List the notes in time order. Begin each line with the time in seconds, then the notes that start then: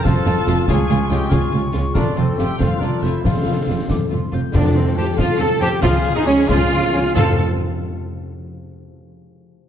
Already playing: F2 F3 C4
0.04 F1 F2 F3 C4 F4 A4 C5 F5 A5 C6, concert bass drum, snare
0.26 F1 F2 F3 C4 F4 A4, snare
0.47 F1 F2 F3 C4 F4, snare
0.68 C#2 C#3 G#3 C#4 F4 G#4 F5 G#5 C#6, concert bass drum, snare
0.89 C#2 G#3 C#4 F4
1.09 C#2 G#3 C#4 F4 G4 D#5 G5, snare
1.30 C#2 C#4 F4 G#4 C#5 F5 G#5 C#6, concert bass drum, snare
1.34 G#3
1.52 C#2 G#3 C#4 F4 G4 G#4
1.72 C#2 G#3 F4 G#4, snare
1.76 C#4
1.94 F1 F2 F3 A3 C4 D4 F4 A4 A#4 D5 C6, concert bass drum, snare
2.15 F1 F2 A3 C4 F4 A4 C5
2.38 F1 F2 A3 C4 F4 G4 E5 G5, snare
2.58 F1 F2 A3 C4 F4 A4 C5 F5 C6, concert bass drum, snare
2.79 F1 F2 A3 C4 D4 F4 A#4 D5, snare
3.02 F1 F2 A3 C4 E4 F4 C5 E5, snare
3.23 F1 F2 F3 A3 C4 F4 A4 C5 F5 C6, concert bass drum, snare
3.46 F1 F2 A3 C4 F4
3.67 F1 F2 A3 C4 F4
3.89 F1 F2 A3 C4 F4 C5 D6, concert bass drum, snare
4.10 F1 F2 A3 C4 F4 A4 C6
4.31 F1 F2 A3 C4 F4 G6
4.53 F2 F3 D4 F4 A4 D5, concert bass drum, snare, crash
4.74 C4 C5
4.95 F2 F3 A3 G4 C5 G5 A5
5.16 F2 F3 F4 F5, concert bass drum, snare
5.20 A4
5.38 F2 F3 C4 A4 A5, snare
5.60 F2 F3 A3 G4 C5 G5 A5, snare
5.82 C#2 C#3 F3 F4 G#4 F5, concert bass drum, snare
6.04 C#4
6.15 D#4 D#5
6.25 C#2 F3 G#3 C#4 G#4 C#5 G#5, snare
6.48 C#2 F3 F4 G#4 F5, concert bass drum, snare
6.71 C#2 F3 C#4 G#4
6.93 C#2 F3 G#3 F4 C#5 G#5
7.14 F2 F3 A3 C4 F4 A4 C5 F5 A5, mid tom
7.19 C5